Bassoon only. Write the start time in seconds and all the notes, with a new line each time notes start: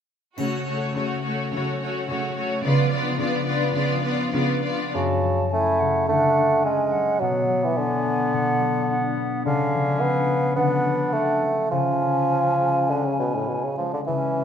4.95 C#3
5.53 A3
6.08 A3
6.65 G#3
7.20 F#3
7.64 E3
7.78 D3
9.45 D3
10.01 B3
10.56 B3
11.12 A3
11.71 F3
12.90 D3
13.05 C#3
13.19 B2
13.35 A2
13.49 B2
13.64 C#3
13.78 F3
13.94 D3
14.07 E3